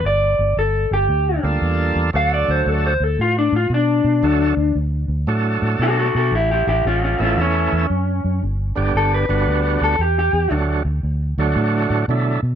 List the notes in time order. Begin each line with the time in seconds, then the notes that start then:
0.04 G1 D5
0.39 G1
0.57 G1 A4
0.91 G1 G4
1.09 D2
1.43 D2 G3 A#3 D4 F4 A4
1.62 E2
1.95 E2
2.13 D2 F#3 A3 D4 F#4 A4 F5
2.34 D5
2.48 D2 C5
2.66 D2 A4
2.87 C5
3.00 D2 A4
3.19 A2 F4
3.38 D4
3.53 A2 F4
3.70 B2
3.74 D4
4.04 B2
4.23 D2 F#3 A3 D4 F#4 A4
4.57 D2
4.75 D2
5.08 D2
5.27 A2 F#3 A3 D4 F#4 A4
5.62 A2
5.79 B2 F#4 A4
5.99 F#4 A4
6.15 B2 F#4 A4
6.32 A1 E4
6.36 G4
6.51 E4 G4
6.67 A1 E4 G4
6.85 A1 C#4 F4
7.04 C#4 F4
7.19 A1 E3 A3 C#4 E4 F4 A4
7.37 E2 C#4
7.72 E2
7.90 F#2
8.25 F#2
8.43 G1
8.75 G1 D3 G3 B3 D4 G4
8.95 G1 A4
9.14 B4
9.29 G1 D3 G3 B3 D4 F#4
9.47 D2
9.81 D2 A4
9.99 E2 G4
10.19 G4
10.33 E2
10.51 D2 D3 F#3 A3 D4 F#4
10.85 D2
11.03 D2
11.38 D2 D3 F#3 A3 D4 F#4
11.56 A2
11.90 A2
12.08 B2 D3 F#3 A3 D4 E4
12.43 B2